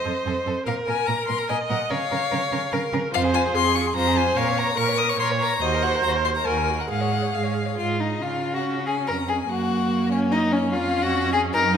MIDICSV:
0, 0, Header, 1, 5, 480
1, 0, Start_track
1, 0, Key_signature, -5, "minor"
1, 0, Tempo, 413223
1, 770, Time_signature, 3, 2, 24, 8
1, 3638, Key_signature, -5, "major"
1, 6042, Tempo, 423131
1, 7482, Tempo, 436364
1, 10362, Tempo, 412939
1, 13478, End_track
2, 0, Start_track
2, 0, Title_t, "Violin"
2, 0, Program_c, 0, 40
2, 0, Note_on_c, 0, 75, 72
2, 506, Note_off_c, 0, 75, 0
2, 773, Note_on_c, 0, 77, 66
2, 866, Note_off_c, 0, 77, 0
2, 1009, Note_on_c, 0, 80, 74
2, 1238, Note_on_c, 0, 82, 72
2, 1256, Note_off_c, 0, 80, 0
2, 1476, Note_off_c, 0, 82, 0
2, 1483, Note_on_c, 0, 84, 67
2, 1612, Note_on_c, 0, 82, 69
2, 1629, Note_off_c, 0, 84, 0
2, 1719, Note_off_c, 0, 82, 0
2, 1726, Note_on_c, 0, 80, 76
2, 1819, Note_off_c, 0, 80, 0
2, 1968, Note_on_c, 0, 78, 62
2, 2203, Note_off_c, 0, 78, 0
2, 2225, Note_on_c, 0, 77, 82
2, 3384, Note_off_c, 0, 77, 0
2, 3648, Note_on_c, 0, 77, 99
2, 3741, Note_off_c, 0, 77, 0
2, 3882, Note_on_c, 0, 80, 83
2, 3975, Note_off_c, 0, 80, 0
2, 4133, Note_on_c, 0, 84, 98
2, 4366, Note_on_c, 0, 85, 86
2, 4383, Note_off_c, 0, 84, 0
2, 4492, Note_on_c, 0, 84, 79
2, 4509, Note_off_c, 0, 85, 0
2, 4590, Note_off_c, 0, 84, 0
2, 4597, Note_on_c, 0, 82, 103
2, 4854, Note_on_c, 0, 80, 87
2, 4872, Note_off_c, 0, 82, 0
2, 5069, Note_on_c, 0, 77, 87
2, 5087, Note_off_c, 0, 80, 0
2, 5318, Note_on_c, 0, 82, 88
2, 5335, Note_off_c, 0, 77, 0
2, 5545, Note_on_c, 0, 85, 101
2, 5563, Note_off_c, 0, 82, 0
2, 5783, Note_on_c, 0, 87, 88
2, 5800, Note_off_c, 0, 85, 0
2, 5917, Note_on_c, 0, 85, 85
2, 5935, Note_off_c, 0, 87, 0
2, 6031, Note_off_c, 0, 85, 0
2, 6038, Note_on_c, 0, 84, 82
2, 6129, Note_off_c, 0, 84, 0
2, 6272, Note_on_c, 0, 82, 76
2, 6512, Note_on_c, 0, 75, 86
2, 6529, Note_off_c, 0, 82, 0
2, 6749, Note_on_c, 0, 78, 78
2, 6766, Note_off_c, 0, 75, 0
2, 6971, Note_off_c, 0, 78, 0
2, 6978, Note_on_c, 0, 82, 82
2, 7068, Note_off_c, 0, 82, 0
2, 7231, Note_on_c, 0, 84, 77
2, 7281, Note_off_c, 0, 84, 0
2, 7356, Note_on_c, 0, 82, 68
2, 7471, Note_on_c, 0, 80, 72
2, 7488, Note_off_c, 0, 82, 0
2, 7846, Note_on_c, 0, 78, 55
2, 7862, Note_off_c, 0, 80, 0
2, 7952, Note_off_c, 0, 78, 0
2, 7958, Note_on_c, 0, 78, 74
2, 8448, Note_on_c, 0, 77, 61
2, 8464, Note_off_c, 0, 78, 0
2, 8928, Note_off_c, 0, 77, 0
2, 8934, Note_on_c, 0, 77, 54
2, 9022, Note_off_c, 0, 77, 0
2, 9177, Note_on_c, 0, 75, 41
2, 9420, Note_on_c, 0, 77, 47
2, 9437, Note_off_c, 0, 75, 0
2, 9771, Note_off_c, 0, 77, 0
2, 9778, Note_on_c, 0, 78, 41
2, 9866, Note_off_c, 0, 78, 0
2, 10132, Note_on_c, 0, 80, 49
2, 10357, Note_off_c, 0, 80, 0
2, 10363, Note_on_c, 0, 82, 57
2, 10597, Note_on_c, 0, 80, 52
2, 10615, Note_off_c, 0, 82, 0
2, 10834, Note_on_c, 0, 78, 60
2, 10851, Note_off_c, 0, 80, 0
2, 11551, Note_off_c, 0, 78, 0
2, 11558, Note_on_c, 0, 73, 52
2, 11651, Note_off_c, 0, 73, 0
2, 11794, Note_on_c, 0, 75, 68
2, 11887, Note_off_c, 0, 75, 0
2, 12036, Note_on_c, 0, 73, 49
2, 12254, Note_off_c, 0, 73, 0
2, 12261, Note_on_c, 0, 77, 64
2, 12608, Note_on_c, 0, 78, 70
2, 12625, Note_off_c, 0, 77, 0
2, 12953, Note_off_c, 0, 78, 0
2, 12960, Note_on_c, 0, 80, 63
2, 13053, Note_off_c, 0, 80, 0
2, 13205, Note_on_c, 0, 82, 68
2, 13298, Note_off_c, 0, 82, 0
2, 13440, Note_on_c, 0, 75, 55
2, 13478, Note_off_c, 0, 75, 0
2, 13478, End_track
3, 0, Start_track
3, 0, Title_t, "Viola"
3, 0, Program_c, 1, 41
3, 0, Note_on_c, 1, 72, 62
3, 741, Note_off_c, 1, 72, 0
3, 774, Note_on_c, 1, 70, 62
3, 1737, Note_on_c, 1, 75, 65
3, 1755, Note_off_c, 1, 70, 0
3, 2212, Note_on_c, 1, 73, 66
3, 2230, Note_off_c, 1, 75, 0
3, 3168, Note_on_c, 1, 70, 60
3, 3186, Note_off_c, 1, 73, 0
3, 3636, Note_off_c, 1, 70, 0
3, 3643, Note_on_c, 1, 72, 76
3, 4120, Note_on_c, 1, 68, 67
3, 4138, Note_off_c, 1, 72, 0
3, 4598, Note_off_c, 1, 68, 0
3, 4603, Note_on_c, 1, 72, 67
3, 5073, Note_on_c, 1, 73, 76
3, 5090, Note_off_c, 1, 72, 0
3, 5546, Note_off_c, 1, 73, 0
3, 5553, Note_on_c, 1, 70, 78
3, 6022, Note_off_c, 1, 70, 0
3, 6029, Note_on_c, 1, 73, 70
3, 6501, Note_off_c, 1, 73, 0
3, 6516, Note_on_c, 1, 72, 78
3, 7460, Note_off_c, 1, 72, 0
3, 7474, Note_on_c, 1, 70, 52
3, 7946, Note_off_c, 1, 70, 0
3, 7955, Note_on_c, 1, 68, 53
3, 9154, Note_off_c, 1, 68, 0
3, 9424, Note_on_c, 1, 61, 43
3, 10799, Note_off_c, 1, 61, 0
3, 10838, Note_on_c, 1, 58, 53
3, 12244, Note_off_c, 1, 58, 0
3, 12266, Note_on_c, 1, 61, 59
3, 13218, Note_on_c, 1, 63, 47
3, 13236, Note_off_c, 1, 61, 0
3, 13478, Note_off_c, 1, 63, 0
3, 13478, End_track
4, 0, Start_track
4, 0, Title_t, "Violin"
4, 0, Program_c, 2, 40
4, 56, Note_on_c, 2, 69, 43
4, 149, Note_off_c, 2, 69, 0
4, 311, Note_on_c, 2, 69, 46
4, 403, Note_off_c, 2, 69, 0
4, 541, Note_on_c, 2, 69, 45
4, 634, Note_off_c, 2, 69, 0
4, 778, Note_on_c, 2, 70, 53
4, 871, Note_off_c, 2, 70, 0
4, 1016, Note_on_c, 2, 70, 46
4, 1109, Note_off_c, 2, 70, 0
4, 1247, Note_on_c, 2, 70, 44
4, 1340, Note_off_c, 2, 70, 0
4, 1482, Note_on_c, 2, 70, 39
4, 1575, Note_off_c, 2, 70, 0
4, 1739, Note_on_c, 2, 70, 53
4, 1832, Note_off_c, 2, 70, 0
4, 1972, Note_on_c, 2, 70, 51
4, 2065, Note_off_c, 2, 70, 0
4, 2198, Note_on_c, 2, 70, 53
4, 2291, Note_off_c, 2, 70, 0
4, 2449, Note_on_c, 2, 70, 51
4, 2542, Note_off_c, 2, 70, 0
4, 2685, Note_on_c, 2, 70, 50
4, 2778, Note_off_c, 2, 70, 0
4, 2925, Note_on_c, 2, 70, 45
4, 3018, Note_off_c, 2, 70, 0
4, 3159, Note_on_c, 2, 70, 60
4, 3252, Note_off_c, 2, 70, 0
4, 3404, Note_on_c, 2, 70, 50
4, 3497, Note_off_c, 2, 70, 0
4, 3631, Note_on_c, 2, 65, 58
4, 3764, Note_on_c, 2, 68, 52
4, 3782, Note_off_c, 2, 65, 0
4, 3875, Note_on_c, 2, 65, 52
4, 3893, Note_off_c, 2, 68, 0
4, 4008, Note_on_c, 2, 68, 56
4, 4026, Note_off_c, 2, 65, 0
4, 4113, Note_off_c, 2, 68, 0
4, 4120, Note_on_c, 2, 65, 51
4, 4234, Note_on_c, 2, 68, 53
4, 4251, Note_off_c, 2, 65, 0
4, 4361, Note_on_c, 2, 65, 49
4, 4378, Note_off_c, 2, 68, 0
4, 4487, Note_on_c, 2, 68, 46
4, 4505, Note_off_c, 2, 65, 0
4, 4598, Note_off_c, 2, 68, 0
4, 4605, Note_on_c, 2, 65, 61
4, 4732, Note_on_c, 2, 68, 51
4, 4749, Note_off_c, 2, 65, 0
4, 4847, Note_on_c, 2, 65, 54
4, 4864, Note_off_c, 2, 68, 0
4, 4967, Note_on_c, 2, 68, 59
4, 4984, Note_off_c, 2, 65, 0
4, 5082, Note_off_c, 2, 68, 0
4, 5087, Note_on_c, 2, 70, 61
4, 5212, Note_on_c, 2, 73, 55
4, 5229, Note_off_c, 2, 70, 0
4, 5320, Note_on_c, 2, 70, 55
4, 5337, Note_off_c, 2, 73, 0
4, 5441, Note_on_c, 2, 73, 54
4, 5458, Note_off_c, 2, 70, 0
4, 5549, Note_off_c, 2, 73, 0
4, 5556, Note_on_c, 2, 70, 50
4, 5675, Note_on_c, 2, 73, 54
4, 5693, Note_off_c, 2, 70, 0
4, 5792, Note_on_c, 2, 70, 51
4, 5809, Note_off_c, 2, 73, 0
4, 5924, Note_on_c, 2, 73, 50
4, 5941, Note_off_c, 2, 70, 0
4, 6043, Note_off_c, 2, 73, 0
4, 6060, Note_on_c, 2, 70, 64
4, 6172, Note_on_c, 2, 73, 47
4, 6189, Note_off_c, 2, 70, 0
4, 6292, Note_on_c, 2, 70, 56
4, 6309, Note_off_c, 2, 73, 0
4, 6413, Note_on_c, 2, 73, 52
4, 6430, Note_off_c, 2, 70, 0
4, 6521, Note_off_c, 2, 73, 0
4, 6527, Note_on_c, 2, 66, 56
4, 6652, Note_on_c, 2, 70, 45
4, 6669, Note_off_c, 2, 66, 0
4, 6764, Note_on_c, 2, 66, 50
4, 6781, Note_off_c, 2, 70, 0
4, 6888, Note_on_c, 2, 70, 51
4, 6905, Note_off_c, 2, 66, 0
4, 7002, Note_off_c, 2, 70, 0
4, 7008, Note_on_c, 2, 66, 51
4, 7125, Note_on_c, 2, 70, 41
4, 7142, Note_off_c, 2, 66, 0
4, 7233, Note_on_c, 2, 66, 43
4, 7250, Note_off_c, 2, 70, 0
4, 7362, Note_on_c, 2, 70, 42
4, 7379, Note_off_c, 2, 66, 0
4, 7467, Note_off_c, 2, 70, 0
4, 7474, Note_on_c, 2, 66, 49
4, 7595, Note_on_c, 2, 70, 39
4, 7612, Note_off_c, 2, 66, 0
4, 7714, Note_on_c, 2, 66, 44
4, 7731, Note_off_c, 2, 70, 0
4, 7834, Note_on_c, 2, 70, 40
4, 7851, Note_off_c, 2, 66, 0
4, 7951, Note_off_c, 2, 70, 0
4, 7958, Note_on_c, 2, 77, 44
4, 8072, Note_on_c, 2, 73, 43
4, 8089, Note_off_c, 2, 77, 0
4, 8191, Note_on_c, 2, 77, 43
4, 8207, Note_off_c, 2, 73, 0
4, 8313, Note_on_c, 2, 73, 45
4, 8329, Note_off_c, 2, 77, 0
4, 8416, Note_off_c, 2, 73, 0
4, 8423, Note_on_c, 2, 77, 44
4, 8545, Note_on_c, 2, 73, 35
4, 8561, Note_off_c, 2, 77, 0
4, 8658, Note_on_c, 2, 77, 38
4, 8674, Note_off_c, 2, 73, 0
4, 8789, Note_on_c, 2, 73, 36
4, 8806, Note_off_c, 2, 77, 0
4, 8907, Note_off_c, 2, 73, 0
4, 8914, Note_on_c, 2, 65, 77
4, 9162, Note_on_c, 2, 63, 59
4, 9179, Note_off_c, 2, 65, 0
4, 9402, Note_on_c, 2, 65, 58
4, 9419, Note_off_c, 2, 63, 0
4, 9758, Note_on_c, 2, 66, 61
4, 9774, Note_off_c, 2, 65, 0
4, 10109, Note_off_c, 2, 66, 0
4, 10116, Note_on_c, 2, 68, 50
4, 10204, Note_off_c, 2, 68, 0
4, 10344, Note_on_c, 2, 70, 66
4, 10436, Note_off_c, 2, 70, 0
4, 10587, Note_on_c, 2, 68, 57
4, 10680, Note_off_c, 2, 68, 0
4, 10835, Note_on_c, 2, 66, 65
4, 11543, Note_off_c, 2, 66, 0
4, 11558, Note_on_c, 2, 61, 65
4, 11789, Note_on_c, 2, 63, 81
4, 11807, Note_off_c, 2, 61, 0
4, 12026, Note_on_c, 2, 61, 66
4, 12044, Note_off_c, 2, 63, 0
4, 12261, Note_on_c, 2, 65, 69
4, 12278, Note_off_c, 2, 61, 0
4, 12614, Note_on_c, 2, 66, 78
4, 12632, Note_off_c, 2, 65, 0
4, 12959, Note_off_c, 2, 66, 0
4, 12966, Note_on_c, 2, 68, 69
4, 13059, Note_off_c, 2, 68, 0
4, 13210, Note_on_c, 2, 70, 86
4, 13449, Note_off_c, 2, 70, 0
4, 13478, End_track
5, 0, Start_track
5, 0, Title_t, "Cello"
5, 0, Program_c, 3, 42
5, 64, Note_on_c, 3, 41, 46
5, 157, Note_off_c, 3, 41, 0
5, 302, Note_on_c, 3, 41, 56
5, 395, Note_off_c, 3, 41, 0
5, 539, Note_on_c, 3, 41, 52
5, 632, Note_off_c, 3, 41, 0
5, 780, Note_on_c, 3, 46, 56
5, 873, Note_off_c, 3, 46, 0
5, 1026, Note_on_c, 3, 46, 42
5, 1119, Note_off_c, 3, 46, 0
5, 1262, Note_on_c, 3, 46, 54
5, 1355, Note_off_c, 3, 46, 0
5, 1508, Note_on_c, 3, 46, 48
5, 1600, Note_off_c, 3, 46, 0
5, 1740, Note_on_c, 3, 46, 59
5, 1833, Note_off_c, 3, 46, 0
5, 1980, Note_on_c, 3, 46, 56
5, 2073, Note_off_c, 3, 46, 0
5, 2214, Note_on_c, 3, 49, 57
5, 2307, Note_off_c, 3, 49, 0
5, 2459, Note_on_c, 3, 49, 51
5, 2552, Note_off_c, 3, 49, 0
5, 2699, Note_on_c, 3, 49, 64
5, 2792, Note_off_c, 3, 49, 0
5, 2932, Note_on_c, 3, 49, 57
5, 3025, Note_off_c, 3, 49, 0
5, 3171, Note_on_c, 3, 49, 65
5, 3264, Note_off_c, 3, 49, 0
5, 3407, Note_on_c, 3, 49, 68
5, 3500, Note_off_c, 3, 49, 0
5, 3645, Note_on_c, 3, 41, 72
5, 4063, Note_off_c, 3, 41, 0
5, 4121, Note_on_c, 3, 41, 61
5, 4543, Note_off_c, 3, 41, 0
5, 4602, Note_on_c, 3, 41, 80
5, 5023, Note_off_c, 3, 41, 0
5, 5075, Note_on_c, 3, 46, 70
5, 5498, Note_off_c, 3, 46, 0
5, 5561, Note_on_c, 3, 46, 61
5, 5986, Note_off_c, 3, 46, 0
5, 6038, Note_on_c, 3, 46, 69
5, 6459, Note_off_c, 3, 46, 0
5, 6518, Note_on_c, 3, 39, 70
5, 6939, Note_off_c, 3, 39, 0
5, 6992, Note_on_c, 3, 39, 60
5, 7421, Note_off_c, 3, 39, 0
5, 7485, Note_on_c, 3, 39, 62
5, 7903, Note_off_c, 3, 39, 0
5, 7963, Note_on_c, 3, 44, 61
5, 8392, Note_off_c, 3, 44, 0
5, 8456, Note_on_c, 3, 44, 52
5, 8883, Note_off_c, 3, 44, 0
5, 8942, Note_on_c, 3, 44, 53
5, 9367, Note_off_c, 3, 44, 0
5, 9422, Note_on_c, 3, 49, 39
5, 10366, Note_on_c, 3, 41, 43
5, 10383, Note_off_c, 3, 49, 0
5, 10837, Note_off_c, 3, 41, 0
5, 10844, Note_on_c, 3, 42, 47
5, 12272, Note_on_c, 3, 41, 56
5, 12289, Note_off_c, 3, 42, 0
5, 13233, Note_off_c, 3, 41, 0
5, 13244, Note_on_c, 3, 42, 63
5, 13478, Note_off_c, 3, 42, 0
5, 13478, End_track
0, 0, End_of_file